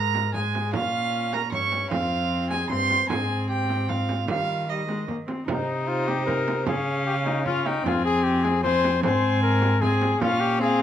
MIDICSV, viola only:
0, 0, Header, 1, 2, 480
1, 0, Start_track
1, 0, Tempo, 393959
1, 899, Time_signature, 3, 2, 24, 8
1, 13189, End_track
2, 0, Start_track
2, 0, Title_t, "Viola"
2, 0, Program_c, 0, 41
2, 0, Note_on_c, 0, 56, 69
2, 396, Note_off_c, 0, 56, 0
2, 407, Note_on_c, 0, 56, 65
2, 894, Note_on_c, 0, 61, 69
2, 913, Note_off_c, 0, 56, 0
2, 1846, Note_off_c, 0, 61, 0
2, 1853, Note_on_c, 0, 61, 65
2, 2328, Note_on_c, 0, 60, 72
2, 2346, Note_off_c, 0, 61, 0
2, 3267, Note_off_c, 0, 60, 0
2, 3274, Note_on_c, 0, 60, 66
2, 3751, Note_off_c, 0, 60, 0
2, 3773, Note_on_c, 0, 60, 67
2, 5191, Note_off_c, 0, 60, 0
2, 5219, Note_on_c, 0, 55, 59
2, 5694, Note_off_c, 0, 55, 0
2, 5701, Note_on_c, 0, 55, 78
2, 5931, Note_off_c, 0, 55, 0
2, 5947, Note_on_c, 0, 56, 67
2, 6179, Note_off_c, 0, 56, 0
2, 6186, Note_on_c, 0, 58, 71
2, 6284, Note_off_c, 0, 58, 0
2, 6422, Note_on_c, 0, 60, 60
2, 6659, Note_off_c, 0, 60, 0
2, 6666, Note_on_c, 0, 63, 82
2, 8069, Note_off_c, 0, 63, 0
2, 8116, Note_on_c, 0, 61, 88
2, 9061, Note_off_c, 0, 61, 0
2, 9068, Note_on_c, 0, 61, 80
2, 9541, Note_on_c, 0, 60, 86
2, 9560, Note_off_c, 0, 61, 0
2, 10509, Note_off_c, 0, 60, 0
2, 10526, Note_on_c, 0, 60, 86
2, 10987, Note_off_c, 0, 60, 0
2, 10994, Note_on_c, 0, 60, 88
2, 11931, Note_off_c, 0, 60, 0
2, 11966, Note_on_c, 0, 60, 81
2, 12428, Note_off_c, 0, 60, 0
2, 12436, Note_on_c, 0, 61, 92
2, 12905, Note_on_c, 0, 60, 102
2, 12924, Note_off_c, 0, 61, 0
2, 13189, Note_off_c, 0, 60, 0
2, 13189, End_track
0, 0, End_of_file